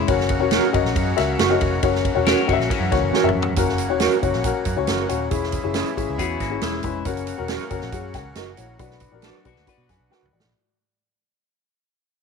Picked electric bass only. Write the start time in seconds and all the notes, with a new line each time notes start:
0.09 F#1
0.41 E1
0.74 F#1
0.85 A#1
0.96 F#2
1.19 C#2
1.40 F#1
1.62 F1
1.83 F#1
2.17 E1
2.49 F#1
2.59 A#1
2.81 F#2
2.92 C#2
3.02 F#1
3.24 F#1
3.36 F#2
3.57 F#1
3.90 E1
4.23 F#1
4.34 A#1
4.66 F#2
4.78 C#2
4.89 F#1
5.10 D#1
5.32 E1
5.65 F#1
5.97 G#1
6.09 C#2
6.19 E2
6.40 G#1
6.63 E1
6.84 F1
7.06 F#1
7.39 E1
7.71 F#1
7.82 A#1
7.93 F#2
8.14 C#2
8.36 F#1
8.58 A#1
8.80 B1
9.13 A#1
9.46 B1
9.56 D2
9.78 B2
9.89 F#2
10.00 B1
10.23 C#2
10.33 A1
10.44 A#1